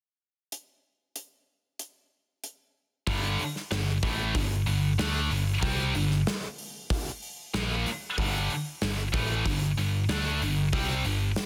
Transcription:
0.52 closed hi-hat
1.16 closed hi-hat
1.79 closed hi-hat
2.44 closed hi-hat
3.07 G1 G2 D3 G3, kick, open hi-hat
3.39 muted picked electric bass stroke, muted distorted electric guitar stroke, open hi-hat
3.56 snare
3.71 G1 G2 D3, snare, open hi-hat
4.03 A1 A2 E3 A3, kick, open hi-hat
4.35 G1 G2 D3, kick, open hi-hat
4.66 G1 G2 D3, open hi-hat
4.99 D2 D3 A3 D4, snare, open hi-hat
5.31 G1 G2 D3, open hi-hat
5.62 C2 C3 G3 C4, kick, open hi-hat
5.94 G1 G2 D3, open hi-hat
6.11 snare
6.27 snare, open hi-hat
6.58 open hi-hat
6.90 kick, open hi-hat
7.22 open hi-hat
7.54 A#1 A#2 F3 A#3, snare
7.86 muted distorted electric guitar stroke, snare, open hi-hat
8.18 G1 G2 D3 G3, kick, open hi-hat
8.50 muted distorted electric guitar stroke, muted picked electric bass stroke, open hi-hat
8.81 G1 G2 D3, snare, open hi-hat
9.13 A1 A2 E3 A3, kick, open hi-hat
9.46 G2 D3, kick, open hi-hat
9.77 G1 G2 D3, open hi-hat
10.09 D2 D3 A3 D4, snare, open hi-hat
10.41 G1 G2 D3, open hi-hat
10.73 C2 C3 G3 C4, kick, open hi-hat
11.04 G1 G2 D3, open hi-hat
11.36 snare, open hi-hat

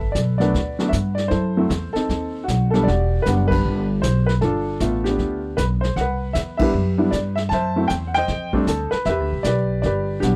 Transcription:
Already playing: G1 A4 B4 E5
0.01 kick
0.12 B1 D5, kick, snare, hi-hat pedal
0.38 F#3 A3 B3 D4 F#4 B4 D5, snare
0.54 D2, brush sweep, kick, snare
0.79 F#3 A3 B3 D4, snare
0.89 G2 E5, kick, snare
0.93 hi-hat pedal
1.15 D5, snare
1.28 F#2 E4 A4 C5, brush sweep, kick, snare
1.57 F#3 A3 C4 E4
1.70 E2, kick, snare, hi-hat pedal
1.93 C4 D#4 A4, muted upright bass stroke, snare
2.09 D#2, brush sweep, kick, snare
2.44 F#4
2.48 B1, kick, snare, hi-hat pedal
2.70 G3 B3 A4, snare
2.75 D4 A4
2.83 E1 D5
2.87 F#4 G4, brush sweep, kick, snare
3.22 F#1 B4, kick, snare, hi-hat pedal
3.26 G3 B3 D4 F#5
3.48 D4 B4, kick, crash
3.52 G4
3.65 G1, brush sweep
4.02 B1 C5, kick, snare, hi-hat pedal
4.26 B4, snare
4.41 G1 D4 F4 A4, brush sweep, kick, snare
4.80 A1 A3 B3 F4 E5, kick, snare, hi-hat pedal
5.04 B3 D4 G4, snare
5.19 D2, brush sweep, kick, snare
5.57 B1 B4, kick, snare, hi-hat pedal
5.81 C5, snare
5.96 C2 F#5, brush sweep, kick, snare
6.01 B4
6.33 E2 E5, kick, snare, hi-hat pedal
6.57 G3 B3 D4 E4 E5, kick, crash
6.62 G4 B4
6.74 F#2, brush sweep
6.98 G3 B3 D4 E4
7.11 G2 D5, kick, snare, hi-hat pedal
7.35 E5, snare
7.49 F#2 A5, brush sweep, kick, snare
7.53 C5 E5
7.76 F#3 A3 C4 E4
7.88 E2 G5, kick, snare, hi-hat pedal
8.07 F#5
8.14 C5 D#5 G5, snare
8.28 F2, brush sweep, kick, snare
8.53 G3 A3 C4 D4, kick
8.67 D2 A4, kick, snare, hi-hat pedal
8.91 B4, muted upright bass stroke, snare
9.05 E2 E5, brush sweep, kick, snare
9.09 G4 B4
9.20 D2
9.33 B1
9.43 B1 G4 B4 D5, kick, snare, hi-hat pedal
9.82 G1 G4 B4 D5, brush sweep, kick, snare
10.20 B1 G3 B3 D4 F#4 G4, kick, snare, hi-hat pedal

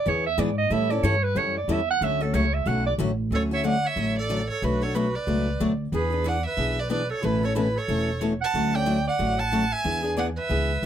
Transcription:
Already playing: D5
0.06 E2 E3 B3 D4 G#4 C#5
0.26 E5
0.38 G#2 E3 B3 D4 G#4 D5
0.58 D#5
0.70 A2 E3 G3 C#4 E4 A4 E5
0.90 C#4 E4 A4 D5
1.03 G2 E3 G3 C#4 E4 A4 C#5
1.23 B4
1.35 F#2 E3 G3 C#4 E4 A4 C#5
1.57 D5
1.68 E2 E3 G3 C#4 E4 A4
1.72 E5
1.90 F#5
2.01 D2 D3 F#3 A3 C#4 F#4 E5
2.21 A3 C#4 F#4 A4
2.33 C#2 D3 F#3 A3 C#4 F#4 C#5
2.54 E5
2.66 B1 D3 F#3 A3 C#4 F#4 F#5
2.86 D5
2.98 A1 D3 F#3 A3 C#4 F#4
3.31 D2 D3 F#3 A3 C#4 F#4 A4
3.35 C#5
3.51 A3 C#4 F#4 C#5 E5
3.64 D3 F#3 A3 C#4 F#4 D5 F#5
3.85 C#5 E5
3.96 A1 D3 F#3 A3 C#4 F#4
4.19 A4 D5
4.29 D3 F#3 A3 C#4 F#4
4.50 A4 C#5
4.62 B1 B2 F#3 A3 D4 F#4 B4
4.82 A3 D4 F#4 A4 C#5
4.95 B2 F#3 A3 D4 F#4 B4
5.15 B4 D5
5.27 C#2 B2 F#3 A3 D4 F#4
5.60 D2 B2 F#3 A3 D4 F#4
5.92 E2 E3 B3 D4 G#4 B4
6.10 B3 D4 G#4
6.24 E3 B3 D4 G#4 D5 F#5
6.46 B4 E5
6.57 B1 E3 B3 D4 G#4
6.79 B4 D5
6.90 E3 B3 D4 G#4 B4 D5
7.10 A4 C#5
7.22 A1 B2 E3 A3 C#4 E4 A4 B4
7.43 A3 C#4 A4 C#5
7.55 B2 E3 A3 C#4 E4 A4 B4
7.77 A4 C#5
7.88 E1 B2 E3 A3 C#4 A4
8.21 B2 E3 A3 C#4 A4
8.41 F#5 A5
8.54 D2 D3 F#3 A3 C#4 F#4
8.73 A3 C#4 F#4 D5 G5
8.86 D3 F#3 A3 C#4 F#4
9.07 D5 F#5
9.19 A1 D3 F#3 A3 C#4 F#4
9.39 F#5 A5
9.52 D3 F#3 A3 C#4 F#4
9.72 E5 G#5
9.84 E2 E3 B3 D4 G#4
10.03 B3 D4 G#4
10.17 E3 B3 D4 G#4 D5 F#5
10.37 B4 E5
10.49 C#2 E3 B3 D4 G#4
10.83 B1

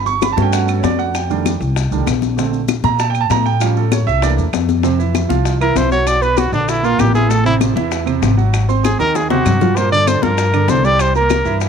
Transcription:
Already playing: G1
0.06 C#6, high conga, maracas
0.22 B5, high bongo, high conga, claves, maracas
0.32 F#4 A5
0.37 G2 A3 B3 C#4, high conga, maracas
0.42 G5
0.53 F#5, high bongo, high conga, maracas
0.68 A4, high conga, claves, maracas
0.79 F2 C#5
0.84 D5, high bongo, low bongo, high conga, maracas
0.99 F#5, high conga, maracas
1.15 G5, high bongo, high conga, claves, maracas
1.30 D#3 G3 A3 D4, high bongo, high conga, maracas
1.45 high bongo, high conga, claves, maracas
1.60 C2, high bongo, high conga, maracas
1.76 high bongo, high conga, maracas
1.91 C2 D#3 G3 A3 D4, high conga, maracas
2.07 A#1, high bongo, low bongo, high conga, claves, maracas
2.22 high bongo, high conga, maracas
2.37 D3 A3 C4, high bongo, high conga, maracas
2.53 high conga, maracas
2.68 high bongo, high conga, claves, maracas
2.84 A#2 A#5, high conga, maracas
2.99 A5, high bongo, high conga, maracas
3.10 G5
3.15 high conga, claves, maracas
3.21 A5
3.30 A2 A#5, high bongo, low bongo, high conga, maracas
3.46 G5, high conga, maracas
3.60 F3 G3 C#4 F5, high bongo, high conga, claves, maracas
3.77 A4, high bongo, high conga, maracas
3.92 C#5, high bongo, high conga, claves, maracas
4.07 C2 E5, high bongo, high conga, maracas
4.22 E3 A3 A#3 D4 D5, high bongo, high conga, maracas
4.38 E2, high conga, maracas
4.53 F2, high bongo, low bongo, high conga, claves, maracas
4.68 high bongo, high conga, maracas
4.83 C3 C4 C5, high bongo, high conga, maracas
4.98 E3 E4 E5, high conga, maracas
5.15 high bongo, high conga, claves, maracas
5.29 C2 F3 F4 F5, high conga, maracas
5.45 high bongo, high conga, maracas
5.60 E3 E4 A#4 E5, high conga, claves, maracas
5.75 B1 C5, high bongo, low bongo, high conga, maracas
5.91 F#3 F#4 C#5 F#5, high conga, maracas
6.07 D5, high bongo, high conga, claves, maracas
6.21 B3 B4 B5, high bongo, high conga, maracas
6.37 F#4, high bongo, high conga, claves, maracas
6.52 A#1 D3 D4 D5, high bongo, high conga, maracas
6.68 E4, high bongo, high conga, maracas
6.83 A#2 A#3 F4 A#4, high conga, maracas
6.99 A1 G4, high bongo, low bongo, high conga, claves, maracas
7.14 E3 E4 G#4 E5, high bongo, high conga, maracas
7.29 A2 A3 A4, high bongo, high conga, maracas
7.45 C3 C4 E4 C5, high conga, maracas
7.61 high bongo, high conga, claves, maracas
7.76 E2 E3 E4 E5, high conga, maracas
7.92 high bongo, high conga, maracas
8.06 C3 C4 C5, high conga, claves, maracas
8.22 G#1, high bongo, low bongo, high conga, maracas
8.37 F#3 F#4 F#5, high conga, maracas
8.54 high bongo, high conga, claves, maracas
8.68 C4 C5 C6, high bongo, high conga, maracas
8.84 G#4, high bongo, high conga, claves, maracas
8.99 D#2 D#3 D#4 A#4 D#5, high bongo, high conga, maracas
9.15 G#4, high bongo, high conga, maracas
9.30 C3 C4 F#4 C5, high bongo, high conga, maracas
9.45 G2, low bongo, low conga, claves, maracas
9.61 F3 F4 F5, low bongo, low conga, maracas
9.77 A#2 A#3 A#4 C5, high bongo, high conga, maracas
9.92 D3 D4 D5, high conga, maracas
10.07 C5, high bongo, high conga, claves, maracas
10.22 G2 F3 F4 A#4 F5, high conga, maracas
10.38 high bongo, high conga, maracas
10.53 D3 D4 D5, high conga, claves, maracas
10.68 C2 C5, high bongo, low bongo, high conga, maracas
10.84 G3 G4 D5 G5, high conga, maracas
10.99 C5, high bongo, high conga, claves, maracas
11.15 A#3 A#4 A#5, high bongo, high conga, maracas
11.30 high bongo, high conga, claves, maracas
11.45 G2 E3 E4 E5, high bongo, high conga, maracas
11.61 high bongo, high conga, maracas

